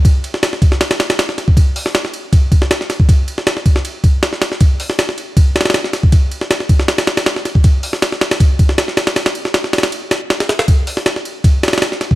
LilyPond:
\new DrumStaff \with { instrumentName = "Drums" } \drummode { \time 4/4 \tempo 4 = 158 <bd cymr>8 cymr16 sn16 <cymr sn>16 sn16 <bd cymr>16 sn16 <cymr sn>16 <cymr sn>16 <cymr sn>16 <cymr sn>16 <cymr sn>16 sn16 <cymr sn>16 bd16 | <bd cymr>8 hho16 sn16 <cymr sn>16 sn16 cymr8 <bd cymr>8 <bd cymr>16 sn16 <cymr sn>16 sn16 <cymr sn>16 bd16 | <bd cymr>8 cymr16 sn16 <cymr sn>16 sn16 <bd cymr>16 sn16 cymr8 <bd cymr>8 <cymr sn>16 sn16 <cymr sn>16 sn16 | <bd cymr>8 hho16 sn16 <cymr sn>16 sn16 cymr8 <bd cymr>8 <cymr sn>32 <cymr sn>32 <cymr sn>32 <cymr sn>32 <cymr sn>16 sn16 <cymr sn>16 bd16 |
<bd cymr>8 cymr16 sn16 <cymr sn>16 sn16 <bd cymr>16 sn16 <cymr sn>16 <cymr sn>16 <cymr sn>16 <cymr sn>16 <cymr sn>16 sn16 <cymr sn>16 bd16 | <bd cymr>8 hho16 sn16 <cymr sn>16 sn16 <cymr sn>16 <cymr sn>16 <bd cymr>8 <bd cymr>16 sn16 <cymr sn>16 sn16 <cymr sn>16 <cymr sn>16 | <cymr sn>16 <cymr sn>16 cymr16 sn16 <cymr sn>16 sn16 <cymr sn>32 <cymr sn>32 <cymr sn>16 cymr8 <cymr sn>8 <cymr sn>16 <cymr sn>16 <cymr sn>16 <cymr sn>16 | <bd cymr>8 hho16 sn16 <cymr sn>16 sn16 cymr8 <bd cymr>8 <cymr sn>32 <cymr sn>32 <cymr sn>32 <cymr sn>32 <cymr sn>16 sn16 <cymr sn>16 bd16 | }